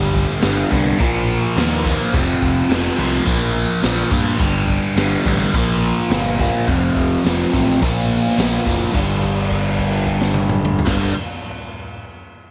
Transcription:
Already playing: picked electric bass G1, overdriven electric guitar G2 D3 G3
0.15 kick, open hi-hat
0.40 picked electric bass G1, overdriven electric guitar G2 D3 G3, snare, open hi-hat
0.71 picked electric bass C2, overdriven electric guitar G2 D3 G3, kick, open hi-hat
0.99 picked electric bass A#1, overdriven electric guitar A#2 F3 A#3, kick, open hi-hat
1.28 open hi-hat
1.56 picked electric bass D#2, overdriven electric guitar A#2 F3 A#3, snare, open hi-hat
1.85 overdriven electric guitar A#2 F3 A#3, kick, open hi-hat
2.13 picked electric bass F1, overdriven electric guitar F2 C3 F3, kick, open hi-hat
2.42 picked electric bass F1, kick, open hi-hat
2.69 picked electric bass F1, overdriven electric guitar F2 C3 F3, snare, open hi-hat
2.97 picked electric bass C2, overdriven electric guitar F2 C3 F3, kick, open hi-hat
3.24 picked electric bass A#1, overdriven electric guitar A#2 F3 A#3, kick, open hi-hat
3.56 open hi-hat
3.82 picked electric bass A#1, overdriven electric guitar A#2 F3 A#3, snare, open hi-hat
4.11 picked electric bass G2, overdriven electric guitar A#2 F3 A#3, kick, open hi-hat
4.37 picked electric bass G1, overdriven electric guitar G2 D3 G3, kick, open hi-hat
4.68 kick, open hi-hat
4.96 picked electric bass G1, overdriven electric guitar G2 D3 G3, snare, open hi-hat
5.25 picked electric bass A1, overdriven electric guitar G2 D3 G3, kick, open hi-hat
5.54 picked electric bass A#1, overdriven electric guitar A#2 F3 A#3, kick, open hi-hat
5.82 open hi-hat
6.10 picked electric bass G1, overdriven electric guitar A#2 F3, snare, open hi-hat
6.14 overdriven electric guitar A#3
6.39 overdriven electric guitar A#2 F3 A#3, kick, open hi-hat
6.67 picked electric bass F1, overdriven electric guitar F2 C3 F3, kick, open hi-hat
6.96 picked electric bass F1, kick, open hi-hat
7.24 picked electric bass F1, overdriven electric guitar F2 C3 F3, snare, open hi-hat
7.52 picked electric bass A1, overdriven electric guitar F2 C3 F3, kick, open hi-hat
7.82 picked electric bass A#1, overdriven electric guitar A#2 F3 A#3, kick, open hi-hat
8.12 open hi-hat
8.27 snare
8.37 picked electric bass A#1, overdriven electric guitar A#2 F3 A#3, snare, open hi-hat
8.65 picked electric bass F#1, overdriven electric guitar A#2 F3 A#3, kick, open hi-hat
8.91 picked electric bass G1, overdriven electric guitar G2 D3 G3, kick, crash
9.23 kick, crash
9.37 crash
9.51 kick, crash
9.65 crash
9.78 kick, crash
9.93 crash
10.06 kick, crash
10.21 snare
10.34 high tom
10.49 mid tom
10.65 mid tom
10.79 floor tom
10.85 picked electric bass G1, overdriven electric guitar G2 D3, kick, snare, crash
10.89 overdriven electric guitar G3

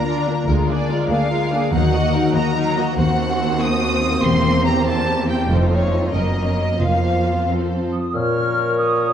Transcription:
Already playing: cello section D2, harp D3 A#3 A#4, violin section A#5
0.05 viola section D4 F4, harp F4, violin section A#4 D5
0.27 harp A#3, viola section A#3 D4, violin section A#4 D5
0.47 cello section D2, double bass section D2, harp D3, viola section G#3 F4, violin section A#4
0.69 harp A#3, viola section A#3 D4, violin section G#4 D5
0.90 viola section G#3 F4, harp G#4, violin section A#4
1.10 cello section D2, viola section A#3 D4, violin section G#4 D5 F5, harp A#4
1.31 viola section G#3 F4, harp G#4, violin section A#4
1.52 viola section A#3 D4, harp A#3, violin section G#4 D5
1.72 cello section D#2, double bass section D#2, harp D#3, viola section F#3 D#4, violin section D#4 A#4 F#5
1.93 harp A#3, viola section A#3 F#4, violin section F#4 D#5
2.14 viola section F#3 D#4, violin section D#4 A#4, harp F#4
2.35 cello section D#2, viola section A#3 F#4, violin section F#4 D#5 A#5, harp A#4
2.56 viola section F#3 D#4, violin section D#4 A#4, harp F#4
2.77 viola section A#3 F#4, harp A#3, violin section F#4 D#5
2.97 cello section D#2, double bass section D#2, harp D#3, viola section A#3 C4, violin section F#4 C5 F#5
3.19 harp A#3
3.40 harp F#4
3.61 harp C5, violin section D#6
3.83 harp A#4
4.04 harp F#4
4.23 double bass section E1, cello section E2, harp E3, violin section G4 C6
4.45 harp A#3
4.65 harp G4, violin section A#5
4.87 harp C5, violin section A5
5.08 harp A#4
5.29 harp G4, violin section G5
5.50 double bass section F1, cello section F2, harp F2, viola section A3 D#4, violin section F4 C5
5.71 harp A3, violin section C#5
5.92 harp D#4 C5
6.13 double bass section F#1, cello section F#2, harp F#2, viola section A#3 C#4, violin section A#4 D#5
6.36 harp A#3
6.58 harp C#4 A#4
6.80 double bass section F1, cello section F2, harp F2, viola section F4, violin section C5 F5
7.04 harp C4
7.26 harp F4 A#4
7.47 harp F2, viola section C4, violin section A4
7.71 harp C4
7.93 harp F4 A4, flute section D#6
8.14 bassoon A#2, harp A#2, clarinet A#4, oboe C#5, flute section F6
8.36 harp C#4
8.58 harp A#4
8.78 harp C#5, flute section D#6

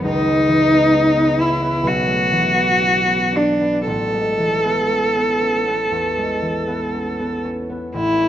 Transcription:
Already playing: harp B3 C#4
0.04 harp C#2, cello D#4
0.27 harp G#3
0.48 harp E3
0.71 harp B3
0.93 harp C#4
1.15 harp B3
1.38 harp C#4, cello E4
1.61 harp B3
1.83 harp B1, cello F#4
2.07 harp A3
2.31 harp E3
2.54 harp B3
2.79 harp C#4
3.04 harp B3
3.32 harp D4
3.36 cello D4
3.60 harp B3
3.87 harp A1, cello A4
4.13 harp G#3
4.38 harp E3
4.64 harp B3
4.90 harp C#4
5.16 harp B3
5.42 harp C#4
5.66 harp B3
5.91 harp E2
6.17 harp G#3
6.42 harp E3
6.67 harp B3
6.94 harp C#4
7.19 harp B3
7.45 harp C#4
7.69 harp B3
7.94 harp A1, cello E4
8.19 harp C#4

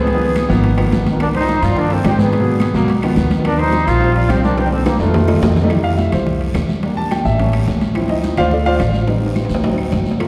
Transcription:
Already playing: upright bass C#2, trombone B3, flute G#4
0.07 high bongo, high conga, high timbale, long guiro
0.14 grand piano D#3 F3 A#3 B3
0.21 high bongo, high conga
0.36 high bongo, high conga, high timbale, short guiro, claves
0.49 upright bass G#1, grand piano D#3 F3 A#3 B3, high conga, short guiro
0.64 high bongo, high conga, high timbale, long guiro
0.77 grand piano D#3 F3 A#3 B3, high conga, high timbale, claves
0.92 upright bass C2, high bongo, low bongo, high conga, low timbale, short guiro
1.06 high bongo, high conga, high timbale, short guiro
1.12 grand piano D#3 F3 A#3 B3
1.20 trombone D4, flute A#4, high bongo, high conga, high timbale, long guiro, claves
1.34 trombone D#4, flute C5, high conga, high timbale
1.41 grand piano D#3 F3 A#3 D4
1.48 high bongo, high conga, short guiro
1.62 upright bass G2, trombone F4, flute D5, high timbale, short guiro, claves
1.76 grand piano D#3 F3 A#3 D4, trombone D4, flute A#4, high bongo, high conga, long guiro
1.91 trombone C4, flute A4, high conga, high timbale
2.04 upright bass G#2, grand piano D#3 F3 A#3 D4, flute G4, high bongo, low bongo, high conga, high timbale, low timbale, short guiro, claves
2.08 trombone C4
2.18 trombone B3, flute G#4, high conga, short guiro
2.33 high bongo, high conga, high timbale, long guiro
2.39 grand piano B2 F#3 A#3
2.47 high bongo, high conga
2.60 high bongo, high conga, high timbale, short guiro, claves
2.74 upright bass C#2, grand piano B2 F#3 A#3, high bongo, high conga, short guiro
2.88 high bongo, high conga, high timbale, long guiro
3.02 grand piano D#3 F3 B3, high conga, high timbale, claves
3.16 upright bass D#2, high bongo, low bongo, high conga, short guiro
3.30 high bongo, high conga, high timbale, short guiro
3.38 grand piano D#3 F3 B3
3.44 trombone D4, flute A#4, high bongo, high conga, high timbale, long guiro, claves
3.59 trombone D#4, flute C5, high conga, high timbale
3.67 grand piano F3 G3 C4
3.72 high bongo, high conga, short guiro
3.86 upright bass A#1, trombone F4, flute C5, high timbale, short guiro, claves
4.01 grand piano F3 G3 C4, high bongo, high conga, long guiro
4.15 trombone F4, flute D5, high conga, high timbale
4.29 upright bass C2, grand piano F3 G3 C4, trombone C4, flute G4, high bongo, low bongo, high conga, high timbale, short guiro, claves
4.44 trombone D4, flute A#4, high conga, short guiro
4.57 trombone C4, flute G4, high bongo, high conga, high timbale, long guiro
4.65 grand piano D#3 A#3 D4
4.71 trombone C4, flute A4, high bongo, high conga, high timbale
4.86 trombone A#3, flute G4, high bongo, high conga, high timbale, short guiro, claves
4.95 grand piano D#3, flute F4, high conga
4.99 upright bass F2, trombone A3, grand piano A#3 D4, high bongo, low timbale, short guiro
5.05 high conga
5.14 high bongo, low conga, low timbale, long guiro
5.27 grand piano G3 A3 D#4, high bongo, low timbale, claves
5.34 low conga
5.42 upright bass F2, low bongo, low conga, low timbale, short guiro
5.52 low conga
5.56 low bongo, low timbale, short guiro
5.62 grand piano G3 A3 D#4, low conga
5.69 grand piano G3 A3 E4, high bongo, high conga, high timbale, long guiro, claves
5.84 grand piano F5, high conga, high timbale
5.98 grand piano E5, high bongo, high conga, short guiro
6.12 upright bass C2, grand piano C5, low conga, high timbale, short guiro, claves
6.27 high bongo, high conga, low conga, long guiro
6.41 high conga, high timbale
6.54 upright bass E2, high bongo, low bongo, high conga, high timbale, low timbale, short guiro, claves
6.69 high conga, short guiro
6.83 grand piano G3 A#3 D4, high bongo, high conga, high timbale, long guiro
6.97 grand piano A5, high bongo, high conga
7.11 grand piano G5, high bongo, high conga, high timbale, short guiro, claves
7.25 upright bass A1, grand piano E5, high bongo, high conga, short guiro
7.38 grand piano G3 A#3 C#4, high bongo, high conga, high timbale, long guiro
7.53 high conga, high timbale, claves
7.67 upright bass D2, high bongo, low bongo, high conga, short guiro
7.81 high bongo, high conga, high timbale, short guiro
7.95 grand piano F3 C4 E4, high bongo, high conga, high timbale, long guiro, claves
8.09 grand piano D#4 D#5, high conga, high timbale
8.23 high bongo, high conga, short guiro
8.37 upright bass D2, grand piano F4 C5 D5 F5, low conga, high timbale, short guiro, claves
8.51 grand piano D4 F4 A4 D5, high bongo, high conga, long guiro
8.66 grand piano F4 C5 D5 F5, high conga, high timbale
8.80 upright bass A1, high bongo, low bongo, high conga, high timbale, short guiro, claves
8.94 high conga, short guiro
9.07 grand piano G3 C4 D#4, high bongo, high conga, high timbale, long guiro
9.22 high bongo, high conga
9.26 high timbale
9.36 high bongo, high conga, short guiro, claves
9.45 high timbale
9.49 upright bass D2, high bongo, high conga, short guiro
9.54 low timbale
9.64 grand piano F#3 C4 D#4, high bongo, high conga, low timbale, long guiro
9.74 low timbale
9.78 high conga, claves
9.92 upright bass G1, high bongo, low bongo, high conga, low timbale, short guiro
10.06 high bongo, high conga, short guiro
10.11 low timbale
10.20 grand piano A3 A#3 F4, high bongo, high conga, high timbale, long guiro, claves

